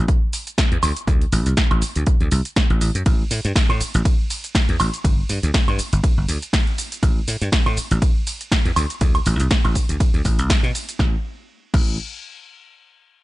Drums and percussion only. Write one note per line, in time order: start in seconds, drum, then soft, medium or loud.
0.08 kick loud
0.08 closed hi-hat medium
0.08 shaker soft
0.33 open hi-hat loud
0.33 shaker medium
0.47 closed hi-hat medium
0.47 shaker soft
0.58 kick loud
0.58 snare loud
0.58 closed hi-hat medium
0.58 shaker soft
0.72 closed hi-hat soft
0.83 open hi-hat loud
0.83 high woodblock medium
0.83 shaker medium
0.97 closed hi-hat medium
0.97 shaker soft
1.07 kick loud
1.07 closed hi-hat medium
1.07 shaker soft
1.21 closed hi-hat soft
1.32 open hi-hat loud
1.32 shaker medium
1.46 closed hi-hat soft
1.46 shaker soft
1.57 kick loud
1.57 snare loud
1.57 closed hi-hat medium
1.57 shaker soft
1.71 closed hi-hat soft
1.71 high woodblock medium
1.82 open hi-hat loud
1.82 shaker medium
1.96 closed hi-hat medium
1.96 shaker soft
2.07 kick loud
2.07 closed hi-hat medium
2.07 shaker soft
2.21 closed hi-hat soft
2.31 open hi-hat loud
2.31 shaker medium
2.45 closed hi-hat soft
2.45 shaker soft
2.56 kick loud
2.56 snare loud
2.56 closed hi-hat medium
2.56 shaker soft
2.70 closed hi-hat soft
2.81 open hi-hat loud
2.81 shaker medium
2.95 closed hi-hat medium
2.95 shaker soft
3.06 kick loud
3.06 closed hi-hat medium
3.06 ride medium
3.06 shaker soft
3.31 open hi-hat loud
3.31 shaker medium
3.45 closed hi-hat medium
3.45 shaker soft
3.56 kick loud
3.56 snare loud
3.56 closed hi-hat medium
3.56 ride medium
3.56 shaker soft
3.70 closed hi-hat soft
3.70 high woodblock medium
3.81 open hi-hat loud
3.81 shaker medium
3.94 closed hi-hat medium
3.94 shaker soft
4.05 kick loud
4.05 closed hi-hat medium
4.05 ride medium
4.05 shaker soft
4.30 open hi-hat loud
4.30 shaker medium
4.44 closed hi-hat medium
4.44 shaker soft
4.55 kick loud
4.55 snare loud
4.55 closed hi-hat medium
4.55 ride medium
4.55 shaker soft
4.69 closed hi-hat soft
4.80 open hi-hat loud
4.80 high woodblock medium
4.80 shaker medium
4.94 closed hi-hat medium
4.94 shaker soft
5.04 kick loud
5.04 closed hi-hat medium
5.04 ride medium
5.04 shaker soft
5.29 open hi-hat loud
5.29 shaker medium
5.43 closed hi-hat medium
5.43 shaker soft
5.54 kick loud
5.54 snare loud
5.54 closed hi-hat medium
5.54 ride medium
5.54 shaker soft
5.68 closed hi-hat soft
5.68 high woodblock medium
5.79 open hi-hat loud
5.79 shaker medium
5.93 closed hi-hat medium
5.93 shaker soft
6.04 kick loud
6.04 closed hi-hat medium
6.04 ride medium
6.04 shaker soft
6.29 open hi-hat loud
6.29 shaker medium
6.42 closed hi-hat medium
6.42 shaker soft
6.53 kick loud
6.53 snare loud
6.53 closed hi-hat medium
6.53 ride medium
6.53 shaker soft
6.67 closed hi-hat soft
6.78 open hi-hat loud
6.78 shaker medium
6.92 closed hi-hat medium
6.92 shaker soft
7.03 kick loud
7.03 closed hi-hat medium
7.03 ride medium
7.03 shaker soft
7.28 open hi-hat loud
7.28 shaker medium
7.42 closed hi-hat medium
7.42 shaker soft
7.52 kick loud
7.52 snare loud
7.52 closed hi-hat medium
7.52 ride medium
7.52 shaker soft
7.66 closed hi-hat soft
7.66 high woodblock medium
7.77 open hi-hat loud
7.77 shaker medium
7.91 closed hi-hat medium
7.91 shaker soft
8.02 kick loud
8.02 closed hi-hat medium
8.02 ride medium
8.02 shaker soft
8.27 open hi-hat loud
8.27 shaker medium
8.41 closed hi-hat medium
8.41 shaker soft
8.52 kick loud
8.52 snare loud
8.52 closed hi-hat medium
8.52 ride medium
8.52 shaker soft
8.65 closed hi-hat soft
8.76 open hi-hat medium
8.76 high woodblock medium
8.76 shaker medium
8.90 closed hi-hat medium
8.90 shaker medium
9.01 kick loud
9.01 closed hi-hat medium
9.01 ride medium
9.01 shaker soft
9.15 closed hi-hat soft
9.15 high woodblock medium
9.26 open hi-hat loud
9.26 shaker medium
9.40 closed hi-hat medium
9.40 shaker soft
9.51 kick loud
9.51 snare loud
9.51 closed hi-hat medium
9.51 ride medium
9.51 shaker soft
9.65 closed hi-hat soft
9.65 high woodblock medium
9.75 kick medium
9.75 open hi-hat medium
9.75 shaker medium
9.89 closed hi-hat medium
9.89 shaker soft
10.00 kick loud
10.00 closed hi-hat medium
10.00 ride medium
10.00 shaker soft
10.14 closed hi-hat soft
10.25 kick medium
10.25 open hi-hat loud
10.25 shaker medium
10.39 closed hi-hat medium
10.39 shaker soft
10.50 kick loud
10.50 snare loud
10.50 closed hi-hat medium
10.50 ride medium
10.50 shaker soft
10.64 closed hi-hat soft
10.75 open hi-hat medium
10.75 shaker medium
10.89 closed hi-hat medium
10.89 shaker soft
10.99 kick loud
10.99 snare medium
11.74 kick loud
11.74 crash medium